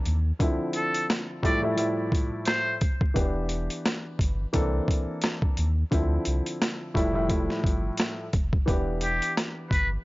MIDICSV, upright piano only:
0, 0, Header, 1, 2, 480
1, 0, Start_track
1, 0, Tempo, 689655
1, 279, Time_signature, 4, 2, 24, 8
1, 6989, End_track
2, 0, Start_track
2, 0, Title_t, "Upright piano"
2, 0, Program_c, 0, 0
2, 0, Note_on_c, 0, 52, 85
2, 0, Note_on_c, 0, 58, 80
2, 0, Note_on_c, 0, 60, 79
2, 0, Note_on_c, 0, 62, 88
2, 0, Note_on_c, 0, 69, 97
2, 94, Note_off_c, 0, 52, 0
2, 95, Note_off_c, 0, 58, 0
2, 97, Note_off_c, 0, 60, 0
2, 99, Note_off_c, 0, 62, 0
2, 101, Note_off_c, 0, 69, 0
2, 274, Note_on_c, 0, 50, 88
2, 279, Note_on_c, 0, 53, 86
2, 284, Note_on_c, 0, 60, 79
2, 289, Note_on_c, 0, 64, 92
2, 987, Note_off_c, 0, 53, 0
2, 992, Note_on_c, 0, 45, 94
2, 996, Note_off_c, 0, 50, 0
2, 997, Note_off_c, 0, 64, 0
2, 997, Note_on_c, 0, 53, 81
2, 1001, Note_off_c, 0, 60, 0
2, 1002, Note_on_c, 0, 55, 81
2, 1007, Note_on_c, 0, 64, 107
2, 1114, Note_off_c, 0, 45, 0
2, 1120, Note_off_c, 0, 53, 0
2, 1125, Note_off_c, 0, 55, 0
2, 1125, Note_on_c, 0, 45, 96
2, 1130, Note_off_c, 0, 64, 0
2, 1130, Note_on_c, 0, 53, 81
2, 1136, Note_on_c, 0, 55, 79
2, 1141, Note_on_c, 0, 64, 103
2, 1217, Note_off_c, 0, 45, 0
2, 1222, Note_off_c, 0, 53, 0
2, 1227, Note_off_c, 0, 55, 0
2, 1227, Note_on_c, 0, 45, 92
2, 1232, Note_off_c, 0, 64, 0
2, 1233, Note_on_c, 0, 53, 82
2, 1238, Note_on_c, 0, 55, 75
2, 1242, Note_on_c, 0, 64, 100
2, 1902, Note_off_c, 0, 45, 0
2, 1905, Note_off_c, 0, 53, 0
2, 1908, Note_off_c, 0, 55, 0
2, 1910, Note_off_c, 0, 64, 0
2, 2185, Note_on_c, 0, 52, 83
2, 2190, Note_on_c, 0, 59, 80
2, 2196, Note_on_c, 0, 62, 86
2, 2200, Note_on_c, 0, 67, 95
2, 3084, Note_off_c, 0, 52, 0
2, 3087, Note_off_c, 0, 59, 0
2, 3090, Note_off_c, 0, 62, 0
2, 3092, Note_off_c, 0, 67, 0
2, 3151, Note_on_c, 0, 52, 91
2, 3154, Note_on_c, 0, 58, 84
2, 3158, Note_on_c, 0, 60, 81
2, 3162, Note_on_c, 0, 62, 87
2, 3165, Note_on_c, 0, 69, 101
2, 3934, Note_off_c, 0, 52, 0
2, 3936, Note_off_c, 0, 58, 0
2, 3938, Note_off_c, 0, 60, 0
2, 3939, Note_off_c, 0, 62, 0
2, 3941, Note_off_c, 0, 69, 0
2, 4113, Note_on_c, 0, 50, 90
2, 4118, Note_on_c, 0, 53, 87
2, 4123, Note_on_c, 0, 60, 78
2, 4128, Note_on_c, 0, 64, 93
2, 4826, Note_off_c, 0, 53, 0
2, 4832, Note_on_c, 0, 45, 98
2, 4836, Note_off_c, 0, 50, 0
2, 4836, Note_off_c, 0, 64, 0
2, 4836, Note_on_c, 0, 53, 79
2, 4841, Note_off_c, 0, 60, 0
2, 4842, Note_on_c, 0, 55, 83
2, 4846, Note_on_c, 0, 64, 110
2, 4953, Note_off_c, 0, 45, 0
2, 4958, Note_off_c, 0, 53, 0
2, 4963, Note_off_c, 0, 55, 0
2, 4964, Note_on_c, 0, 45, 98
2, 4969, Note_off_c, 0, 64, 0
2, 4969, Note_on_c, 0, 53, 82
2, 4973, Note_on_c, 0, 55, 79
2, 4979, Note_on_c, 0, 64, 102
2, 5058, Note_off_c, 0, 45, 0
2, 5063, Note_off_c, 0, 53, 0
2, 5068, Note_off_c, 0, 55, 0
2, 5068, Note_on_c, 0, 45, 93
2, 5073, Note_off_c, 0, 64, 0
2, 5073, Note_on_c, 0, 53, 82
2, 5078, Note_on_c, 0, 55, 78
2, 5083, Note_on_c, 0, 64, 101
2, 5743, Note_off_c, 0, 45, 0
2, 5745, Note_off_c, 0, 53, 0
2, 5748, Note_off_c, 0, 55, 0
2, 5750, Note_off_c, 0, 64, 0
2, 6025, Note_on_c, 0, 52, 84
2, 6030, Note_on_c, 0, 59, 80
2, 6035, Note_on_c, 0, 62, 84
2, 6041, Note_on_c, 0, 67, 97
2, 6925, Note_off_c, 0, 52, 0
2, 6927, Note_off_c, 0, 59, 0
2, 6930, Note_off_c, 0, 62, 0
2, 6932, Note_off_c, 0, 67, 0
2, 6989, End_track
0, 0, End_of_file